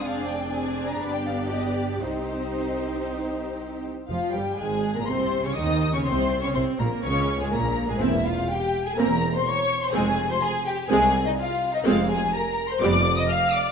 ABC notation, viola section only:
X:1
M:4/4
L:1/16
Q:1/4=123
K:Cm
V:1 name="Viola section"
[CD]4 [CD]4 [=B,D]8 | [CE]12- [CE]2 z2 | [K:Fm] F,2 G,2 A,3 B, C3 D E3 D | C3 D C2 B,2 D3 A, B,3 A, |
[B,C]2 z6 [B,C]2 z6 | [A,C]2 z6 [A,C]2 z6 | [K:Fdor] [A,C]2 z6 [G,=B,]2 z6 |]